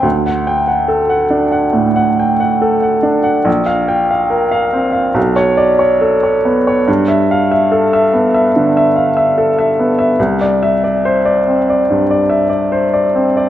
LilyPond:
\new Staff \with { instrumentName = "Grand piano" } { \time 4/4 \key c \lydian \tempo 4 = 71 << { r8 g''16 r2. r16 | r8 g''16 r4. r16 d''16 r4 r16 | r8 f''16 r2. r16 | r8 e''16 r2. r16 | } \\ { d,16 fis''8 fis''16 a'16 fis''16 d'16 fis''16 a,16 fis''16 g''16 fis''16 a'16 fis''16 d'16 fis''16 | bes,,16 f''8 f''16 bes'16 f''16 c'16 f''16 b,,16 cis''8 cis''16 a'16 cis''16 b16 cis''16 | g,16 e''8 e''16 a'16 e''16 b16 e''16 d16 e''16 f''16 e''16 a'16 e''16 b16 e''16 | c,16 d''8 d''16 c''16 d''16 c'16 d''16 g,16 d''16 e''16 d''16 c''16 d''16 c'16 d''16 | } >> }